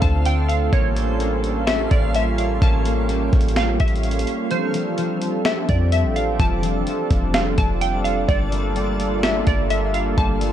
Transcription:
Already playing: analog synth pad D3 A3 C4 F4 A4, harp D3, synth texture D4 C5 F5
0.02 808-style bass D2, synth pluck A5, kick, closed hi-hat
0.25 synth pluck G5, closed hi-hat
0.48 synth pluck F5, closed hi-hat
0.72 808-style bass A1, analog synth pad G3 A#3 C#4, harp A#3, synth texture A#3 G4 C#5, synth pluck C#5, kick, closed hi-hat
0.96 harp A#3, closed hi-hat
1.20 harp A#3, closed hi-hat
1.44 closed hi-hat
1.67 synth pluck E5, snare, closed hi-hat
1.91 808-style bass A1, synth pluck D5, kick, closed hi-hat
2.15 synth pluck E5, closed hi-hat
2.38 synth pluck F5, closed hi-hat
2.62 808-style bass A1, harp A#3, synth pluck A5, kick, closed hi-hat
2.85 harp A#3, closed hi-hat
3.09 harp A#3, closed hi-hat
3.33 808-style bass A1, kick, closed hi-hat
3.41 closed hi-hat
3.49 closed hi-hat
3.56 synth pluck F5, snare, closed hi-hat
3.80 808-style bass A1, synth pluck E5, kick, closed hi-hat
3.88 closed hi-hat
3.96 closed hi-hat
4.03 closed hi-hat
4.11 closed hi-hat
4.19 closed hi-hat
4.27 closed hi-hat
4.51 harp F3, synth texture A3 D5, analog synth pad C4 D4 A4, synth pluck C5, closed hi-hat
4.74 harp F3, closed hi-hat
4.98 harp F3, closed hi-hat
5.22 closed hi-hat
5.45 synth pluck E5, snare, closed hi-hat
5.69 808-style bass F2, synth pluck D5, kick, closed hi-hat
5.92 synth pluck E5, closed hi-hat
6.04 808-style bass A1
6.16 synth pluck F5, closed hi-hat
6.39 808-style bass F1, harp F3, synth texture A4, synth pluck A5, kick, closed hi-hat
6.63 harp F3, closed hi-hat
6.87 harp F3, closed hi-hat
7.11 808-style bass F1, kick, closed hi-hat
7.34 synth pluck F5, snare, closed hi-hat
7.58 808-style bass F1, synth pluck A5, kick, closed hi-hat
7.81 synth pluck G5, closed hi-hat
8.04 synth pluck F5, closed hi-hat
8.28 808-style bass G1, harp G3, analog synth pad G3 A#3 F4 A4, synth texture A#3 F5, synth pluck D5, kick, closed hi-hat
8.52 harp G3, closed hi-hat
8.76 harp G3, closed hi-hat
9.00 closed hi-hat
9.23 synth pluck E5, snare, closed hi-hat
9.47 808-style bass G1, synth pluck D5, kick, closed hi-hat
9.70 synth pluck E5, closed hi-hat
9.94 synth pluck F5, closed hi-hat
10.18 808-style bass G1, harp G3, synth pluck A5, kick, closed hi-hat
10.41 harp G3, closed hi-hat

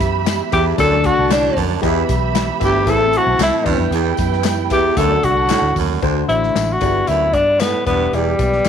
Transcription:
Already playing: grand piano E3 B3 E4 G4 E5, tonewheel organ E3 B3 G4, string section G4 E5 B5
0.00 fingered electric bass F#2, kick, snare, closed hi-hat, tambourine
0.27 snare, clap, closed hi-hat, tambourine
0.52 baritone saxophone E2, fingered electric bass E2, grand piano B3 E4 G4 E5, tenor saxophone G4, kick, closed hi-hat, tambourine
0.77 fingered electric bass D2, baritone saxophone F#2, tonewheel organ D3 A3 F#4, grand piano D3 A3 D4 F#4 D5, string section F#4 D5 A5, tenor saxophone A4, kick, closed hi-hat, tambourine
0.91 grand piano A3 D4 F#4 D5
1.04 tenor saxophone F#4, kick, closed hi-hat, tambourine
1.19 fingered electric bass C2
1.30 baritone saxophone A2, tenor saxophone D4, snare, clap, closed hi-hat, tambourine
1.56 fingered electric bass F2, baritone saxophone F#2, kick, open hi-hat, tambourine
1.82 baritone saxophone E2, fingered electric bass E2, grand piano E3 B3 E4 G4 D#5, tonewheel organ E3 B3 G4, string section G4 E5 B5, kick, closed hi-hat, tambourine
1.88 grand piano E5
2.09 fingered electric bass B1, kick, snare, closed hi-hat, tambourine
2.35 snare, clap, closed hi-hat, tambourine
2.60 fingered electric bass G1, baritone saxophone D2, grand piano B3 E4 G4 E5, kick, closed hi-hat, tambourine
2.65 tenor saxophone G4
2.86 fingered electric bass A1, baritone saxophone E2, grand piano A2 C4 E4 A4 E5, tonewheel organ C4 A4, string section E4 C5 A5, kick, closed hi-hat, tambourine
2.90 tenor saxophone A4
2.98 grand piano B3 E4 A4 E5
3.05 grand piano C4
3.13 closed hi-hat
3.18 tenor saxophone F#4
3.27 fingered electric bass B1
3.39 fingered electric bass C2, baritone saxophone A2, snare, clap, closed hi-hat, tambourine
3.43 tenor saxophone E4
3.64 fingered electric bass E2, baritone saxophone G2, grand piano E3 B3 E4 G4 E5, tonewheel organ B3 G4, string section E4 B4 G5, kick, tambourine, crash
3.78 fingered electric bass F2
3.91 fingered electric bass E2, baritone saxophone E2, closed hi-hat
4.17 fingered electric bass F#2, kick, snare, closed hi-hat, tambourine
4.33 snare
4.44 snare, clap, closed hi-hat, tambourine
4.70 fingered electric bass E2, baritone saxophone E2, grand piano B3 E4 G4 E5, tenor saxophone G4, kick, closed hi-hat, tambourine
4.97 fingered electric bass D2, baritone saxophone F#2, grand piano D3 A3 D4 F#4 D5, tonewheel organ D3 A3 F#4, string section D4 A4 F#5, tenor saxophone A4, kick, closed hi-hat, tambourine
5.09 grand piano A3 D4 F#4 D5
5.23 fingered electric bass C2, tenor saxophone F#4, kick, closed hi-hat
5.49 baritone saxophone A2, snare, clap, closed hi-hat, tambourine
5.62 fingered electric bass D2
5.76 fingered electric bass D#2, baritone saxophone F#2, kick, open hi-hat, tambourine
6.01 baritone saxophone D2, fingered electric bass D2, grand piano D3 A3 D4 F#4 C5, tonewheel organ F#4 D5 C6, kick, closed hi-hat, tambourine
6.28 fingered electric bass A1, grand piano A3 D4 F#4 C5, tenor saxophone E4, closed hi-hat, tambourine
6.43 snare
6.56 fingered electric bass A1, snare, clap, closed hi-hat, tambourine
6.73 tenor saxophone F#4
6.80 fingered electric bass G1, baritone saxophone E2, grand piano G2 B3 F#4 G4 D5, tonewheel organ G3 F#5 B5, kick, closed hi-hat, tambourine
7.07 fingered electric bass D2, baritone saxophone F#2, tenor saxophone E4, closed hi-hat, tambourine
7.33 fingered electric bass G2, tenor saxophone D4, kick, closed hi-hat, tambourine
7.60 baritone saxophone A2, tenor saxophone B3, snare, clap, closed hi-hat, tambourine
7.84 fingered electric bass E1, baritone saxophone G2, grand piano E3 B3 E4 G4 D5, tenor saxophone B3, tonewheel organ G4 E5 D6, kick, closed hi-hat, tambourine
8.13 fingered electric bass E1, baritone saxophone E2, tenor saxophone G3, closed hi-hat
8.39 fingered electric bass B1, grand piano B3 E4 G4 D5, kick, closed hi-hat, tambourine
8.53 snare
8.65 fingered electric bass G1, snare, clap, tambourine

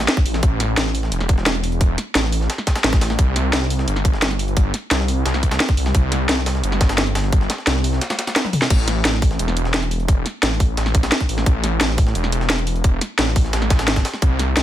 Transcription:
0.08 snare, closed hi-hat
0.17 kick, closed hi-hat
0.26 detuned saw bass A1, closed hi-hat, open hi-hat
0.34 snare
0.43 detuned saw bass A1, kick, closed hi-hat
0.60 snare, closed hi-hat
0.77 detuned saw bass A1, snare, closed hi-hat
0.86 snare
0.95 closed hi-hat, open hi-hat
1.03 snare
1.12 detuned saw bass E1, closed hi-hat
1.20 snare
1.29 kick, closed hi-hat
1.38 snare
1.46 snare, closed hi-hat
1.55 snare, closed hi-hat
1.64 closed hi-hat, open hi-hat
1.72 closed hi-hat
1.81 kick, closed hi-hat
1.98 snare, closed hi-hat
2.15 detuned saw bass A1, snare, closed hi-hat
2.24 snare
2.32 closed hi-hat, open hi-hat
2.41 snare
2.50 snare, closed hi-hat
2.58 snare
2.67 kick, snare, closed hi-hat
2.76 snare, closed hi-hat
2.84 detuned saw bass A1, snare, closed hi-hat
2.93 kick, snare, closed hi-hat
3.01 snare, closed hi-hat, open hi-hat
3.10 snare
3.19 detuned saw bass C2, kick, closed hi-hat
3.36 snare, closed hi-hat
3.53 detuned saw bass C2, snare, closed hi-hat
3.62 snare
3.70 closed hi-hat, open hi-hat
3.79 snare
3.88 detuned saw bass G1, closed hi-hat
3.96 snare
4.05 kick, closed hi-hat
4.14 snare
4.22 snare, closed hi-hat
4.31 snare, closed hi-hat
4.39 closed hi-hat, open hi-hat
4.48 closed hi-hat
4.57 kick, closed hi-hat
4.74 snare, closed hi-hat
4.91 detuned saw bass C2, snare, closed hi-hat
5.00 snare
5.08 closed hi-hat, open hi-hat
5.26 detuned saw bass C2, snare, closed hi-hat
5.34 snare
5.43 kick, closed hi-hat
5.51 snare, closed hi-hat
5.60 snare, closed hi-hat
5.69 kick, closed hi-hat
5.77 detuned saw bass C2, closed hi-hat, open hi-hat
5.86 snare
5.95 detuned saw bass C2, kick, closed hi-hat
6.12 snare, closed hi-hat
6.29 detuned saw bass C2, snare, closed hi-hat
6.38 snare
6.46 snare, closed hi-hat, open hi-hat
6.55 snare
6.63 detuned saw bass G1, closed hi-hat
6.72 snare
6.81 kick, snare, closed hi-hat
6.89 snare, closed hi-hat
6.98 snare, closed hi-hat
7.07 snare, closed hi-hat
7.15 snare, closed hi-hat, open hi-hat
7.24 snare
7.32 kick, closed hi-hat
7.41 snare
7.50 snare, closed hi-hat
7.58 snare
7.67 detuned saw bass C2, snare, closed hi-hat
7.76 snare
7.84 closed hi-hat, open hi-hat
7.93 snare
8.01 snare, closed hi-hat
8.10 snare, closed hi-hat
8.19 snare, closed hi-hat
8.27 snare, closed hi-hat
8.36 snare, closed hi-hat
8.45 snare, high tom
8.53 closed hi-hat, open hi-hat, mid tom
8.62 snare
8.70 detuned saw bass A1, kick, closed hi-hat, crash
8.88 snare, closed hi-hat
9.05 detuned saw bass A1, snare, closed hi-hat
9.14 snare
9.22 kick, closed hi-hat, open hi-hat
9.31 snare
9.39 detuned saw bass E1, closed hi-hat
9.48 snare
9.57 closed hi-hat
9.65 snare
9.74 snare, closed hi-hat
9.83 snare, closed hi-hat
9.91 closed hi-hat, open hi-hat
10.00 closed hi-hat
10.08 kick, closed hi-hat
10.26 snare, closed hi-hat
10.43 detuned saw bass A1, snare, closed hi-hat
10.52 snare
10.60 kick, closed hi-hat, open hi-hat
10.77 detuned saw bass A1, snare, closed hi-hat
10.86 snare
10.95 kick, closed hi-hat
11.03 snare, closed hi-hat
11.12 snare, closed hi-hat
11.20 kick, closed hi-hat
11.29 detuned saw bass A1, closed hi-hat, open hi-hat
11.38 snare
11.46 detuned saw bass A1, kick, closed hi-hat
11.64 snare, closed hi-hat
11.81 detuned saw bass A1, snare, closed hi-hat
11.89 snare
11.98 kick, closed hi-hat, open hi-hat
12.07 snare
12.15 detuned saw bass E1, closed hi-hat
12.24 snare
12.32 closed hi-hat
12.41 snare
12.50 snare, closed hi-hat
12.58 snare, closed hi-hat
12.67 closed hi-hat, open hi-hat
12.76 closed hi-hat
12.84 kick, closed hi-hat
13.01 snare, closed hi-hat
13.19 detuned saw bass A1, snare, closed hi-hat
13.27 snare
13.36 kick, closed hi-hat, open hi-hat
13.45 snare
13.53 detuned saw bass A1, snare, closed hi-hat
13.62 snare
13.70 kick, snare, closed hi-hat
13.79 snare, closed hi-hat
13.88 snare, closed hi-hat
13.96 kick, snare, closed hi-hat
14.05 snare, closed hi-hat, open hi-hat
14.14 snare
14.22 detuned saw bass C2, kick, closed hi-hat
14.39 snare, closed hi-hat
14.57 detuned saw bass C2, snare, closed hi-hat

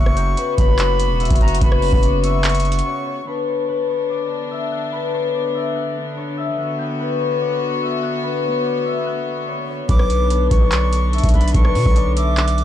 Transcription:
Already playing: 808-style bass F#1, string section C#3 B3 F#4, harp B4 C#5 E5 F#5 C#6 E6 F#6, flute C#6
0.06 cross-stick
0.17 harp G5 G6, closed hi-hat
0.37 harp B4 B5, closed hi-hat
0.58 808-style bass F#1, harp C#5 C#6, flute B5, kick, closed hi-hat
0.79 harp D5 D6, clap, closed hi-hat
1.00 closed hi-hat
1.10 808-style bass E1
1.20 harp E5 E6, closed hi-hat
1.25 closed hi-hat
1.30 808-style bass F#1, kick, closed hi-hat
1.36 closed hi-hat
1.41 808-style bass F#1, harp F#5 F#6, flute A#5, closed hi-hat
1.48 closed hi-hat
1.55 closed hi-hat
1.61 808-style bass F#1, harp B4 B5, flute B5, kick, closed hi-hat
1.72 cross-stick
1.82 harp C#5 C#6, open hi-hat
1.93 808-style bass F#1, kick
2.03 harp D5 D6, closed hi-hat
2.24 harp E5 E6, flute C#6, closed hi-hat
2.44 harp F#5 F#6, clap, closed hi-hat
2.49 closed hi-hat
2.55 closed hi-hat
2.60 closed hi-hat
2.65 closed hi-hat
2.72 closed hi-hat
2.79 closed hi-hat
2.86 harp C#5 C#6
3.06 harp C#5 C#6
3.27 string section D3 B3 D4, harp B4 B5
3.48 harp C#5 C#6
3.68 harp B4 B5
3.89 harp C#5 C#6
4.10 harp D5 D6
4.51 harp E5 E6
4.72 harp F#5 F#6
4.92 harp B4 B5
5.13 harp C#5 C#6
5.34 harp D5 D6
5.55 harp E5 E6
5.75 harp F#5 F#6
6.17 harp C#5 C#6
6.37 harp E5 E6
6.58 string section F#4, harp F#5 F#6
6.79 harp G5 G6
7.00 harp B4 B5
7.20 harp C#5 C#6
7.41 harp D5 D6
7.82 harp E5 E6
8.03 harp F#5 F#6
8.23 harp B4 B5
8.44 harp C#5 C#6
8.65 harp D5 D6
8.86 harp E5 E6
9.06 harp F#5 F#6
9.48 harp C#5 C#6
9.68 harp C#5 C#6
9.89 808-style bass B1, string section D3 D4, harp B4 B5, flute D6, kick, closed hi-hat
9.99 cross-stick
10.10 harp C#5 C#6, closed hi-hat
10.30 harp B4 B5, closed hi-hat
10.51 808-style bass B1, harp C#5 C#6, flute C#6, kick, closed hi-hat
10.72 harp D5 D6, clap, closed hi-hat
10.93 closed hi-hat
11.13 harp E5 E6, closed hi-hat
11.18 closed hi-hat
11.23 808-style bass B1, kick, closed hi-hat
11.29 closed hi-hat
11.34 808-style bass B1, harp F#5 F#6, flute B5, closed hi-hat
11.41 closed hi-hat
11.48 closed hi-hat
11.54 808-style bass B1, harp B4 B5, flute C#6, kick, closed hi-hat
11.65 cross-stick
11.75 808-style bass B2, harp C#5 C#6, open hi-hat
11.86 808-style bass B1, kick
11.96 harp D5 D6, closed hi-hat
12.17 harp E5 E6, flute D6, closed hi-hat
12.37 harp F#5 F#6, clap, closed hi-hat
12.48 closed hi-hat
12.58 closed hi-hat

